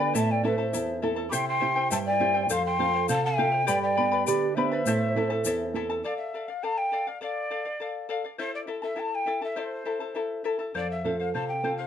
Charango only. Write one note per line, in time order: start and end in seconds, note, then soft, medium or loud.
0.00 0.14 B4 soft
0.00 0.14 D5 medium
0.00 0.15 B5 medium
0.14 0.43 E4 medium
0.14 0.43 A4 medium
0.14 0.44 C5 medium
0.14 0.42 E5 medium
0.14 0.44 A5 medium
0.43 0.58 E4 medium
0.43 0.58 A4 medium
0.43 0.59 E5 medium
0.43 0.57 A5 medium
0.58 0.72 E4 medium
0.58 0.73 A4 medium
0.58 0.73 A5 medium
0.73 1.01 E4 medium
0.73 1.02 A4 medium
0.73 1.01 E5 medium
0.73 1.02 A5 medium
1.02 1.17 E4 medium
1.02 1.16 A4 medium
1.02 1.17 E5 medium
1.02 1.15 A5 medium
1.16 1.31 E4 soft
1.16 1.32 A4 soft
1.16 1.32 A5 medium
1.31 1.60 E4 medium
1.31 1.61 G4 medium
1.31 1.60 C5 medium
1.31 1.59 E5 medium
1.31 1.61 G5 medium
1.60 1.76 E4 medium
1.60 1.75 C5 medium
1.60 1.76 E5 medium
1.60 1.74 G5 medium
1.76 1.90 E4 medium
1.76 1.90 C5 medium
1.76 1.91 G5 medium
1.90 2.19 E4 medium
1.90 2.19 C5 medium
1.90 2.18 E5 medium
1.90 2.20 G5 medium
2.20 2.35 E4 medium
2.20 2.34 C5 medium
2.20 2.35 E5 medium
2.20 2.33 G5 medium
2.34 2.49 E4 soft
2.34 2.49 C5 soft
2.34 2.49 G5 medium
2.50 2.78 A4 medium
2.50 2.79 C5 medium
2.50 2.79 F5 medium
2.79 2.94 A4 medium
2.79 2.94 C5 medium
2.79 2.92 F5 medium
2.94 3.08 C5 soft
2.94 3.09 F5 medium
3.08 3.36 A4 medium
3.08 3.37 C5 medium
3.08 3.38 F5 medium
3.38 3.53 A4 medium
3.38 3.52 C5 medium
3.38 3.50 F5 medium
3.52 3.66 C5 soft
3.52 3.67 F5 medium
3.67 3.96 G4 medium
3.67 3.96 B4 medium
3.67 3.96 D5 medium
3.67 3.95 G5 medium
3.67 3.96 B5 medium
3.96 4.12 B4 medium
3.96 4.12 D5 medium
3.96 4.11 G5 medium
3.96 4.10 B5 medium
4.12 4.26 B4 soft
4.12 4.27 D5 medium
4.12 4.26 B5 medium
4.26 4.56 B4 medium
4.26 4.56 D5 medium
4.26 4.55 G5 medium
4.26 4.57 B5 medium
4.57 4.71 B4 medium
4.57 4.71 D5 medium
4.57 4.71 G5 medium
4.57 4.70 B5 medium
4.72 4.86 B4 soft
4.72 4.86 D5 medium
4.72 4.86 B5 medium
4.87 5.16 E4 medium
4.87 5.16 A4 medium
4.87 5.16 C5 medium
4.87 5.15 E5 medium
4.87 5.16 A5 medium
5.16 5.30 E4 medium
5.16 5.30 A4 medium
5.16 5.30 E5 medium
5.16 5.29 A5 medium
5.30 5.45 E4 soft
5.30 5.45 A4 medium
5.30 5.44 A5 medium
5.46 5.74 E4 medium
5.46 5.75 A4 medium
5.46 5.74 E5 medium
5.46 5.75 A5 medium
5.75 5.89 E4 medium
5.75 5.90 A4 medium
5.75 5.89 E5 medium
5.75 5.88 A5 medium
5.90 6.04 E4 soft
5.90 6.03 A4 medium
5.90 6.04 A5 medium
6.04 6.33 A4 medium
6.04 6.34 D5 medium
6.04 6.34 F5 medium
6.34 6.48 A4 medium
6.34 6.48 D5 medium
6.34 6.47 F5 medium
6.48 6.63 D5 soft
6.48 6.62 F5 medium
6.63 6.91 A4 medium
6.63 6.92 D5 medium
6.63 6.92 F5 medium
6.92 7.06 A4 medium
6.92 7.07 D5 medium
6.92 7.06 F5 medium
7.07 7.21 D5 soft
7.07 7.21 F5 medium
7.21 7.49 A4 medium
7.21 7.50 D5 medium
7.21 7.50 F5 medium
7.50 7.65 A4 medium
7.50 7.65 D5 medium
7.50 7.64 F5 medium
7.65 7.80 D5 soft
7.65 7.80 F5 medium
7.80 8.08 A4 medium
7.80 8.09 D5 medium
7.80 8.09 F5 medium
8.09 8.24 A4 medium
8.09 8.24 D5 medium
8.09 8.23 F5 medium
8.24 8.38 D5 soft
8.24 8.39 F5 medium
8.38 8.66 E4 medium
8.38 8.67 A4 medium
8.38 8.68 C5 medium
8.38 8.66 E5 medium
8.38 8.67 A5 medium
8.67 8.82 E4 medium
8.67 8.82 A4 medium
8.67 8.83 E5 medium
8.67 8.81 A5 medium
8.82 8.95 E4 soft
8.82 8.96 A4 soft
8.82 8.96 A5 soft
8.96 9.26 E4 medium
8.96 9.26 A4 medium
8.96 9.25 E5 medium
8.96 9.27 A5 medium
9.26 9.42 E4 medium
9.26 9.41 A4 medium
9.26 9.42 E5 medium
9.26 9.40 A5 medium
9.42 9.56 E4 soft
9.42 9.56 A4 soft
9.42 9.56 A5 soft
9.56 9.84 E4 medium
9.56 9.85 A4 medium
9.56 9.86 C5 medium
9.56 9.84 E5 medium
9.56 9.85 A5 medium
9.85 10.00 E4 medium
9.85 10.00 A4 medium
9.85 10.01 E5 medium
9.85 9.99 A5 medium
10.00 10.14 E4 soft
10.00 10.15 A4 soft
10.00 10.15 A5 soft
10.15 10.43 E4 medium
10.15 10.44 A4 medium
10.15 10.43 E5 medium
10.15 10.44 A5 medium
10.44 10.59 E4 medium
10.44 10.58 A4 medium
10.44 10.60 E5 medium
10.44 10.58 A5 medium
10.59 10.74 E4 soft
10.59 10.73 A4 soft
10.59 10.74 A5 soft
10.74 11.03 A4 medium
10.74 11.04 C5 medium
10.74 11.04 F5 medium
11.04 11.19 A4 medium
11.04 11.20 C5 medium
11.04 11.18 F5 medium
11.20 11.33 C5 soft
11.20 11.34 F5 medium
11.34 11.63 A4 medium
11.34 11.63 C5 medium
11.34 11.64 F5 medium
11.64 11.78 A4 medium
11.64 11.79 C5 medium
11.64 11.78 F5 medium
11.79 11.87 C5 soft
11.79 11.87 F5 medium